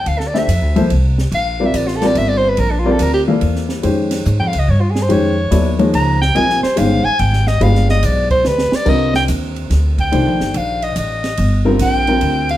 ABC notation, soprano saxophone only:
X:1
M:3/4
L:1/16
Q:"Swing" 1/4=143
K:Bblyd
V:1 name="Soprano saxophone"
f A d e4 z4 z | f3 e d F A d e d c =B | B D F A B G z6 | z4 z g f _e _d F _A c |
_d6 z2 b2 g2 | _a2 c2 f2 a2 g2 _e2 | f2 _e2 d2 c2 =B2 d2 | [K:Cdor] e2 g2 z6 g2- |
g4 f2 e2 e4- | e2 z2 g6 f2 |]